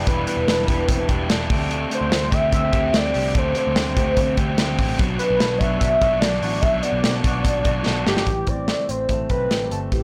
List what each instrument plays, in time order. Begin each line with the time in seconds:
Already playing: clean electric guitar B3 D4 G4
0.06 picked electric bass E1, overdriven electric guitar E3 G3 D4 E4 B4, soft synth lead B4, kick, closed hi-hat
0.27 overdriven electric guitar G3 D4 E4 B4, clean electric guitar B3, soft synth lead B4, closed hi-hat
0.37 picked electric bass E1
0.47 picked electric bass E1, clean electric guitar D4, snare, closed hi-hat
0.66 picked electric bass E1, overdriven electric guitar G3 D4 E4 B4, clean electric guitar G4, kick, closed hi-hat
0.88 picked electric bass E1, clean electric guitar C4, kick, closed hi-hat
0.98 clean electric guitar D4
1.08 picked electric bass E1, overdriven electric guitar G3 D4 E4 B4, clean electric guitar G4, kick, closed hi-hat
1.29 picked electric bass E1, overdriven electric guitar G3 D4 E4 B4, snare, closed hi-hat
1.49 picked electric bass D2, overdriven electric guitar D3 A3 C4 G4, kick, open hi-hat
1.70 overdriven electric guitar D3 A3 C4 G4, closed hi-hat
1.90 overdriven electric guitar D3 A3 C4 G4, soft synth lead C5, closed hi-hat
2.01 picked electric bass D2
2.11 picked electric bass D2, clean electric guitar C4, snare, closed hi-hat
2.31 picked electric bass D2, overdriven electric guitar D3 A3 C4 G4, soft synth lead E5, kick, closed hi-hat
2.52 picked electric bass D2, clean electric guitar C4, soft synth lead E5, kick, closed hi-hat
2.72 picked electric bass D2, overdriven electric guitar D3 A3 C4 G4, kick, closed hi-hat
2.93 picked electric bass D2, overdriven electric guitar D3 A3 C4 G4, soft synth lead D5, snare, closed hi-hat
3.14 picked electric bass C2, overdriven electric guitar D3 A3 C4 G4, open hi-hat
3.35 picked electric bass D2, overdriven electric guitar D3 A3 C4 G4, soft synth lead C5, kick, closed hi-hat
3.55 overdriven electric guitar D3 A3 C4 G4, soft synth lead C5, closed hi-hat
3.67 picked electric bass D2
3.76 picked electric bass D2, clean electric guitar C4, snare, closed hi-hat
3.97 picked electric bass D2, overdriven electric guitar D3 A3 C4 G4, kick, closed hi-hat
4.17 picked electric bass D2, clean electric guitar C4, kick, closed hi-hat
4.37 picked electric bass D2, overdriven electric guitar D3 A3 C4 G4, kick, closed hi-hat
4.57 picked electric bass D2, overdriven electric guitar D3 A3 C4 G4, snare, closed hi-hat
4.78 picked electric bass A1, overdriven electric guitar D3 A3 C4 G4, kick, open hi-hat
4.99 picked electric bass B1, overdriven electric guitar B2 F#3 B3 D4 F#4, kick, closed hi-hat
5.19 overdriven electric guitar F#3 B3 D4 F#4, soft synth lead B4, closed hi-hat
5.30 picked electric bass B1
5.40 picked electric bass B1, clean electric guitar D4, snare, closed hi-hat
5.58 picked electric bass B1, overdriven electric guitar F#3 B3, soft synth lead E5, kick, closed hi-hat
5.62 overdriven electric guitar D4 F#4
5.79 picked electric bass B1, clean electric guitar D4, soft synth lead E5, kick, closed hi-hat
6.01 picked electric bass B1, overdriven electric guitar F#3 B3 D4 F#4, kick, closed hi-hat
6.20 picked electric bass B1, overdriven electric guitar F#3 B3 D4 F#4, soft synth lead D5, snare, closed hi-hat
6.42 picked electric bass A1, overdriven electric guitar F#3 B3 D4 F#4, open hi-hat
6.61 picked electric bass B1, overdriven electric guitar B2 F#3 B3 D4 F#4, soft synth lead E5, kick, closed hi-hat
6.82 overdriven electric guitar F#3 B3 D4 F#4, soft synth lead D5, closed hi-hat
6.93 picked electric bass B1
7.03 picked electric bass B1, clean electric guitar C4, snare, closed hi-hat
7.13 clean electric guitar D4
7.23 picked electric bass B1, overdriven electric guitar F#3 B3 D4 F#4, kick, closed hi-hat
7.45 picked electric bass B1, clean electric guitar D4, kick, closed hi-hat
7.64 picked electric bass B1, overdriven electric guitar F#3 B3 D4 F#4, kick, closed hi-hat
7.85 picked electric bass B1, overdriven electric guitar F#3 B3 D4 F#4, snare
8.06 picked electric bass G1, overdriven electric guitar F#3 B3 D4 F#4, soft synth lead G4, snare
8.17 snare
8.26 picked electric bass A1, clean electric guitar E3, kick, closed hi-hat
8.47 picked electric bass A1, clean electric guitar C4, soft synth lead D5, kick, closed hi-hat
8.68 clean electric guitar A3, snare, closed hi-hat
8.89 picked electric bass A1, clean electric guitar C4, soft synth lead C5, closed hi-hat
9.09 picked electric bass A1, clean electric guitar A3, kick, closed hi-hat
9.30 picked electric bass B1, clean electric guitar C4, soft synth lead B4, kick, closed hi-hat
9.51 picked electric bass A1, clean electric guitar G4, snare, closed hi-hat
9.71 picked electric bass G1, clean electric guitar A3, soft synth lead A4, closed hi-hat
9.92 picked electric bass A1, clean electric guitar E3, soft synth lead G4, kick, closed hi-hat